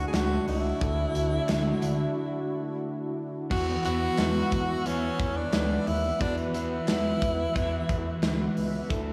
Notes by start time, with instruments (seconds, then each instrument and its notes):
Already playing: tine electric piano D3 A3 D4 E4 F#4, analog synth pad A3 D4 E4 F#4
0.08 tenor saxophone G#4
0.14 analog synth bass D2, tenor saxophone F#4, snare, clap, closed hi-hat
0.48 analog synth bass C#2, tenor saxophone E4, open hi-hat
0.80 analog synth bass D2, tine electric piano D3 D4 E4 F#4 A4, kick, closed hi-hat
1.15 analog synth bass D2, closed hi-hat
1.49 analog synth bass D2, snare, clap, closed hi-hat, tambourine
1.82 analog synth bass D2, clap, closed hi-hat
3.50 analog synth bass E2, overdriven electric guitar E3 B3 E4, tine electric piano E3 B3 E4 F#4 B4, tenor saxophone F#4, analog synth pad B4 E5 F#5 E6, kick, crash
3.84 analog synth bass E2, overdriven electric guitar B3 E4, tenor saxophone F#4, closed hi-hat
4.18 analog synth bass E2, snare, clap, closed hi-hat, tambourine
4.52 analog synth bass E2, kick, clap, closed hi-hat
4.86 analog synth bass E2, overdriven electric guitar B3, tenor saxophone C#4, closed hi-hat
4.90 overdriven electric guitar E4
5.19 analog synth bass E2, kick, closed hi-hat
5.37 tenor saxophone D4
5.53 analog synth bass D2, snare, clap, closed hi-hat, tambourine
5.87 analog synth bass D#2, tenor saxophone E4, open hi-hat
6.20 analog synth bass E2, overdriven electric guitar E3 B3 E4, tine electric piano E3 B3 E4 F#4 B4, tenor saxophone D4, analog synth pad F#6, kick, closed hi-hat
6.38 closed hi-hat
6.53 analog synth bass E2, overdriven electric guitar B3 E4, tenor saxophone E4, closed hi-hat
6.88 analog synth bass E2, snare, clap, closed hi-hat, tambourine
7.22 analog synth bass E2, kick, closed hi-hat
7.53 analog synth bass E2, overdriven electric guitar E3 B3, kick, closed hi-hat
7.60 overdriven electric guitar E4
7.89 analog synth bass E2, kick, closed hi-hat
8.23 analog synth bass D2, snare, clap, closed hi-hat, tambourine
8.57 analog synth bass C#2, open hi-hat
8.89 analog synth bass D2, overdriven electric guitar D3 A3 D4, tine electric piano D3 A3 D4 E4 A4, analog synth pad D5 E6, kick, closed hi-hat